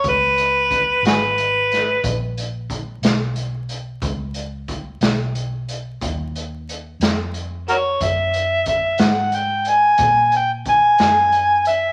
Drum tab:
HH |xxxxxxxxxxxx|xxxxxxxxxxxx|xxxxxxxxxxxx|
SD |---o-o---o--|---o-----o--|---o-----o--|
BD |o-o---o-o---|o-o---o-----|o-o---o-o---|